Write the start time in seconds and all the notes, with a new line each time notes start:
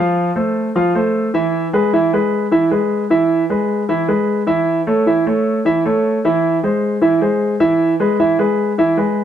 Already playing: F3 F4 F5
0.35 A3 A4 C5
0.76 F3 F4 F5
0.95 A3 A4 C5
1.34 E3 E4 E5
1.73 G#3 G#4 B4
1.93 E3 E4 E5
2.13 G#3 G#4 B4
2.52 E3 E4 E5
2.71 G#3 G#4 B4
3.10 E3 E4 E5
3.50 G#3 G#4 B4
3.89 E3 E4 E5
4.08 G#3 G#4 B4
4.47 E3 E4 E5
4.87 A3 A4 C#5
5.06 E3 E4 E5
5.26 A3 A4 C#5
5.65 E3 E4 E5
5.85 A3 A4 C#5
6.25 E3 E4 E5
6.63 G#3 G#4 C5
7.02 E3 E4 E5
7.21 G#3 G#4 C5
7.60 E3 E4 E5
8.00 G#3 G#4 B4
8.20 E3 E4 E5
8.39 G#3 G#4 B4
8.78 E3 E4 E5
8.97 G#3 G#4 B4